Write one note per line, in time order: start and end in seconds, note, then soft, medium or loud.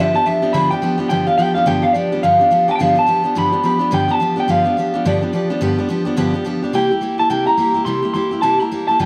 0.00 0.15 G2 medium
0.00 0.15 D3 medium
0.00 0.15 F3 medium
0.00 0.15 B3 medium
0.00 0.14 D4 medium
0.00 0.13 G4 medium
0.00 0.14 E5 medium
0.14 0.24 F3 soft
0.14 0.25 B3 medium
0.14 0.26 D4 medium
0.14 0.26 G4 medium
0.14 0.26 A5 loud
0.26 0.43 F3 medium
0.26 0.43 B3 medium
0.26 0.42 D4 medium
0.26 0.41 G4 medium
0.26 0.54 E5 medium
0.42 0.53 F3 soft
0.42 0.53 B3 medium
0.42 0.54 D4 medium
0.42 0.54 G4 medium
0.53 0.71 G2 medium
0.53 0.71 D3 loud
0.53 0.71 F3 medium
0.53 0.71 B3 medium
0.53 0.71 D4 medium
0.53 0.70 G4 medium
0.53 0.70 B5 loud
0.71 0.81 F3 medium
0.71 0.81 B3 medium
0.71 0.82 D4 medium
0.71 0.82 G4 medium
0.71 0.98 G5 loud
0.82 0.99 F3 medium
0.82 0.98 B3 medium
0.82 0.98 D4 medium
0.82 0.96 G4 medium
0.98 1.09 F3 medium
0.98 1.10 B3 soft
0.98 1.10 D4 soft
0.98 1.10 G4 medium
1.09 1.27 G2 medium
1.09 1.27 D3 medium
1.09 1.27 F3 medium
1.09 1.27 B3 medium
1.09 1.26 D4 medium
1.09 1.25 G4 medium
1.09 1.27 G5 loud
1.27 1.37 F3 soft
1.27 1.38 B3 medium
1.27 1.39 D4 medium
1.27 1.38 G4 medium
1.27 1.37 F5 loud
1.38 1.55 F3 medium
1.38 1.56 B3 medium
1.38 1.55 D4 medium
1.38 1.54 G4 medium
1.38 1.54 G5 loud
1.55 1.66 F3 soft
1.55 1.65 B3 medium
1.55 1.66 D4 medium
1.55 1.66 G4 medium
1.55 1.66 F5 medium
1.66 1.83 G2 medium
1.66 1.83 D3 loud
1.66 1.84 F3 medium
1.66 1.82 B3 medium
1.66 1.82 D4 medium
1.66 1.81 G4 medium
1.66 1.83 G5 loud
1.82 1.93 F3 soft
1.82 1.94 B3 soft
1.82 1.94 D4 medium
1.82 1.94 G4 medium
1.82 1.93 F5 medium
1.93 2.11 F3 medium
1.93 2.12 B3 medium
1.93 2.11 D4 medium
1.93 2.11 G4 medium
1.93 2.21 D5 loud
2.12 2.23 F3 soft
2.12 2.23 B3 soft
2.12 2.24 D4 medium
2.12 2.23 G4 medium
2.23 2.40 G2 medium
2.23 2.40 D3 medium
2.23 2.40 F3 medium
2.23 2.40 B3 medium
2.23 2.40 D4 medium
2.23 2.38 G4 medium
2.23 2.69 F5 medium
2.39 2.49 F3 soft
2.39 2.50 B3 soft
2.39 2.51 D4 medium
2.39 2.51 G4 medium
2.51 2.68 F3 medium
2.51 2.68 B3 medium
2.51 2.68 D4 medium
2.51 2.67 G4 medium
2.68 2.79 F3 medium
2.68 2.79 B3 soft
2.68 2.79 D4 medium
2.68 2.79 G4 medium
2.68 2.72 G5 medium
2.68 2.74 A5 medium
2.76 2.96 G2 medium
2.76 2.81 G5 medium
2.80 2.96 D3 medium
2.80 2.97 F3 medium
2.80 2.96 B3 medium
2.80 2.95 D4 loud
2.80 2.94 G4 loud
2.80 2.98 F5 loud
2.95 3.05 F3 soft
2.95 3.06 B3 medium
2.95 3.07 D4 soft
2.95 3.07 G4 medium
2.95 3.38 A5 loud
3.06 3.24 F3 medium
3.06 3.24 B3 medium
3.06 3.23 D4 medium
3.06 3.22 G4 medium
3.24 3.35 F3 soft
3.24 3.35 B3 medium
3.24 3.36 D4 medium
3.24 3.35 G4 medium
3.35 3.52 G2 medium
3.35 3.52 D3 medium
3.35 3.53 F3 medium
3.35 3.52 B3 medium
3.35 3.52 D4 medium
3.35 3.51 G4 medium
3.35 3.65 B5 loud
3.52 3.62 F3 soft
3.52 3.63 B3 medium
3.52 3.64 D4 soft
3.52 3.64 G4 medium
3.63 3.80 F3 medium
3.63 3.80 B3 medium
3.63 3.78 D4 medium
3.63 3.78 G4 medium
3.63 3.94 B5 loud
3.79 3.91 F3 soft
3.79 3.91 B3 medium
3.79 3.92 D4 medium
3.79 3.91 G4 medium
3.91 4.08 G2 medium
3.91 4.09 D3 medium
3.91 4.09 F3 medium
3.91 4.09 B3 medium
3.91 4.08 D4 medium
3.91 4.07 G4 medium
3.91 4.11 G5 loud
4.08 4.19 F3 medium
4.08 4.20 B3 medium
4.08 4.20 D4 medium
4.08 4.20 G4 medium
4.08 4.39 A5 loud
4.20 4.37 F3 medium
4.20 4.37 B3 medium
4.20 4.36 D4 medium
4.20 4.35 G4 medium
4.36 4.47 F3 soft
4.36 4.48 B3 soft
4.36 4.48 D4 medium
4.36 4.48 G4 medium
4.40 4.50 G5 medium
4.48 4.65 G2 medium
4.48 4.65 D3 medium
4.48 4.65 F3 medium
4.48 4.65 B3 medium
4.48 4.64 D4 medium
4.48 4.63 G4 medium
4.48 5.06 F5 medium
4.64 4.76 F3 soft
4.64 4.77 B3 medium
4.64 4.77 D4 medium
4.64 4.76 G4 medium
4.77 4.93 F3 medium
4.77 4.94 B3 medium
4.77 4.94 D4 medium
4.77 4.92 G4 medium
4.94 5.05 F3 medium
4.94 5.05 B3 medium
4.94 5.05 D4 medium
4.94 5.05 G4 medium
5.05 5.22 G2 medium
5.05 5.22 D3 medium
5.05 5.22 F3 medium
5.05 5.22 B3 loud
5.05 5.21 D4 medium
5.05 5.20 G4 medium
5.05 5.48 D5 medium
5.21 5.32 F3 medium
5.21 5.32 B3 medium
5.21 5.33 D4 medium
5.21 5.32 G4 medium
5.33 5.50 F3 medium
5.33 5.50 B3 medium
5.33 5.49 D4 medium
5.33 5.49 G4 medium
5.50 5.61 F3 medium
5.50 5.61 B3 medium
5.50 5.61 D4 medium
5.50 5.61 G4 medium
5.61 5.78 G2 medium
5.61 5.78 D3 medium
5.61 5.78 F3 medium
5.61 5.78 B3 medium
5.61 5.77 D4 medium
5.61 5.77 G4 loud
5.78 5.87 F3 medium
5.78 5.88 B3 medium
5.78 5.89 D4 medium
5.78 5.89 G4 medium
5.89 6.06 F3 medium
5.89 6.06 B3 medium
5.89 6.05 D4 medium
5.89 6.04 G4 medium
6.05 6.16 F3 medium
6.05 6.16 B3 medium
6.05 6.16 D4 medium
6.05 6.17 G4 medium
6.17 6.34 G2 medium
6.17 6.34 D3 medium
6.17 6.34 F3 loud
6.17 6.34 B3 loud
6.17 6.33 D4 loud
6.17 6.32 G4 loud
6.33 6.43 F3 medium
6.33 6.44 B3 medium
6.33 6.45 D4 medium
6.33 6.45 G4 medium
6.45 6.62 F3 medium
6.45 6.62 B3 medium
6.45 6.62 D4 medium
6.45 6.61 G4 medium
6.63 6.73 F3 soft
6.63 6.73 B3 soft
6.63 6.74 D4 medium
6.63 6.73 G4 medium
6.73 6.90 C3 medium
6.73 6.90 G3 medium
6.73 6.90 A#3 medium
6.73 6.90 E4 medium
6.73 6.89 G4 medium
6.73 7.19 G5 medium
6.91 7.00 A#3 soft
6.91 7.01 E4 medium
6.91 7.02 G4 medium
7.01 7.18 G3 medium
7.01 7.18 A#3 medium
7.01 7.18 E4 medium
7.01 7.17 G4 medium
7.18 7.29 A#3 soft
7.18 7.30 E4 medium
7.18 7.30 G4 medium
7.18 7.30 A5 medium
7.30 7.47 C3 medium
7.30 7.47 G3 medium
7.30 7.47 A#3 medium
7.30 7.47 E4 medium
7.30 7.45 G4 medium
7.30 7.46 G5 loud
7.47 7.57 A#3 soft
7.47 7.58 E4 soft
7.47 7.58 G4 medium
7.47 7.85 A#5 loud
7.57 7.74 G3 medium
7.57 7.75 A#3 medium
7.57 7.74 E4 medium
7.57 7.73 G4 medium
7.74 7.85 A#3 soft
7.74 7.86 E4 medium
7.74 7.86 G4 medium
7.85 8.03 C3 medium
7.85 8.03 G3 medium
7.85 8.03 A#3 medium
7.85 8.02 E4 medium
7.85 8.01 G4 medium
7.85 8.12 C6 loud
8.02 8.14 A#3 soft
8.02 8.14 E4 medium
8.02 8.14 G4 medium
8.14 8.31 G3 medium
8.14 8.31 A#3 medium
8.14 8.31 E4 medium
8.14 8.30 G4 medium
8.14 8.41 C6 loud
8.31 8.42 A#3 soft
8.31 8.42 E4 medium
8.31 8.42 G4 medium
8.42 8.59 C3 medium
8.42 8.59 G3 medium
8.42 8.59 A#3 medium
8.42 8.60 E4 medium
8.42 8.59 G4 medium
8.42 8.59 A5 loud
8.59 8.71 A#3 soft
8.59 8.71 E4 medium
8.59 8.71 G4 medium
8.59 8.87 A#5 loud
8.71 8.88 G3 medium
8.71 8.88 A#3 medium
8.71 8.88 E4 medium
8.71 8.87 G4 medium
8.88 9.00 A#3 soft
8.88 9.00 E4 medium
8.88 8.99 G4 medium
8.88 9.00 A5 loud
8.99 9.05 G2 medium
8.99 9.05 D3 medium
8.99 9.05 F3 medium
8.99 9.05 B3 medium
8.99 9.05 F4 medium
8.99 9.05 G4 medium
8.99 9.05 G5 medium